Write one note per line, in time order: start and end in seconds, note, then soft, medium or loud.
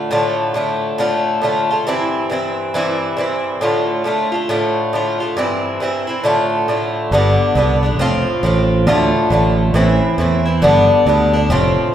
0.00 0.10 D3 medium
0.00 0.11 A3 medium
0.00 0.11 F4 medium
0.11 0.53 A2 medium
0.11 0.54 D3 medium
0.11 0.55 A3 medium
0.11 0.56 F4 medium
0.54 0.97 A2 medium
0.54 0.98 D3 medium
0.54 0.99 A3 medium
0.54 0.99 F4 medium
0.98 1.40 A2 medium
0.98 1.42 D3 medium
0.98 1.43 A3 medium
0.98 1.43 F4 medium
1.41 1.69 A2 medium
1.41 1.70 D3 medium
1.41 1.71 A3 medium
1.41 1.69 F4 medium
1.71 1.87 D3 soft
1.71 1.87 A3 soft
1.71 1.87 F4 medium
1.87 2.28 G2 medium
1.87 2.30 E3 medium
1.87 2.31 C4 medium
1.87 2.31 E4 medium
2.30 2.73 G2 medium
2.30 2.74 E3 medium
2.30 2.74 C4 medium
2.30 2.75 E4 medium
2.74 3.15 G2 medium
2.74 3.17 E3 medium
2.74 3.18 C4 medium
2.74 3.19 E4 medium
3.17 3.61 G2 medium
3.17 3.62 E3 medium
3.17 3.62 C4 medium
3.17 3.63 E4 medium
3.61 4.03 A2 medium
3.61 4.04 D3 medium
3.61 4.05 A3 medium
3.61 4.06 F4 medium
4.04 4.32 A2 medium
4.04 4.33 D3 medium
4.04 4.33 A3 medium
4.04 4.31 F4 medium
4.32 4.49 D3 soft
4.32 4.50 A3 soft
4.32 4.49 F4 medium
4.49 4.92 A2 medium
4.49 4.93 D3 medium
4.49 4.94 A3 medium
4.49 4.94 F4 medium
4.93 5.20 A2 medium
4.93 5.21 D3 medium
4.93 5.21 A3 medium
4.93 5.19 F4 medium
5.20 5.37 D3 soft
5.20 5.37 A3 soft
5.20 5.37 F4 medium
5.37 5.79 G2 medium
5.37 5.80 E3 medium
5.37 5.81 C4 medium
5.37 5.82 E4 medium
5.80 6.08 G2 medium
5.80 6.08 E3 medium
5.80 6.08 C4 medium
5.80 6.06 E4 medium
6.07 6.24 E3 soft
6.07 6.25 C4 soft
6.07 6.24 E4 medium
6.24 6.67 A2 medium
6.24 6.68 D3 medium
6.24 6.69 A3 medium
6.24 6.69 F4 medium
6.68 7.12 A2 medium
6.68 7.12 D3 medium
6.68 7.13 A3 medium
6.68 7.13 F4 medium
7.11 7.36 G1 medium
7.11 7.54 G2 medium
7.11 7.55 D3 medium
7.11 7.56 B3 medium
7.11 7.57 D4 medium
7.55 7.99 C2 medium
7.55 7.83 G2 medium
7.55 7.84 D3 medium
7.55 7.83 B3 medium
7.55 7.82 D4 medium
7.83 7.99 D3 soft
7.83 8.00 B3 soft
7.83 7.99 D4 soft
7.99 8.24 F1 loud
7.99 8.42 A2 medium
7.99 8.43 F3 medium
7.99 8.44 C4 medium
7.99 8.44 F4 medium
8.43 8.87 A1 medium
8.43 8.86 A2 medium
8.43 8.87 F3 medium
8.43 8.88 C4 medium
8.43 8.88 F4 medium
8.87 9.12 D2 loud
8.87 9.29 A2 medium
8.87 9.30 D3 medium
8.87 9.31 A3 medium
8.87 9.32 F4 medium
9.30 9.71 A1 medium
9.30 9.73 A2 medium
9.30 9.75 D3 medium
9.30 9.75 A3 medium
9.30 9.76 F4 medium
9.74 9.99 A1 loud
9.74 10.17 A2 medium
9.74 10.18 E3 medium
9.74 10.19 C4 medium
9.74 10.20 E4 medium
10.18 10.64 E2 medium
10.18 10.46 A2 medium
10.18 10.47 E3 medium
10.18 10.46 C4 medium
10.18 10.44 E4 medium
10.45 10.62 E3 soft
10.45 10.63 C4 soft
10.45 10.62 E4 soft
10.62 10.88 G1 loud
10.62 11.05 G2 medium
10.62 11.06 D3 medium
10.62 11.07 B3 medium
10.62 11.08 D4 medium
11.06 11.51 D2 medium
11.06 11.34 G2 medium
11.06 11.35 D3 medium
11.06 11.34 B3 medium
11.06 11.32 D4 medium
11.33 11.50 D3 soft
11.33 11.51 B3 soft
11.33 11.50 D4 medium
11.50 11.75 F1 loud
11.50 11.92 A2 medium
11.50 11.94 F3 medium
11.50 11.95 C4 medium
11.50 11.95 F4 medium